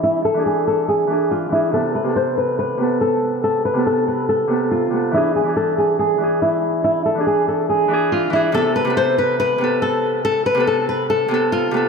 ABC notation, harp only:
X:1
M:4/4
L:1/16
Q:1/4=141
K:Am
V:1 name="Harp"
z3 [E,D^G]4- [E,DG] z2 [E,DG]3 z [E,DG] z | [C,B,A]2 z [C,B,A]4- [C,B,A] z2 [C,B,A]4- [C,B,A] z | z3 [C,B,A]4- [C,B,A] z2 [C,B,A]3 z [C,B,A] z | [E,D^G]2 z [E,DG]4- [E,DG] z2 [E,DG]4- [E,DG] z |
z3 [E,D^G]4- [E,DG] z2 [E,DG]3 z [E,DG] z | [C,B,A]2 z [C,B,A]4- [C,B,A] z2 [C,B,A]4- [C,B,A] z | z3 [C,B,A]4- [C,B,A] z2 [C,B,A]3 z [C,B,A] z |]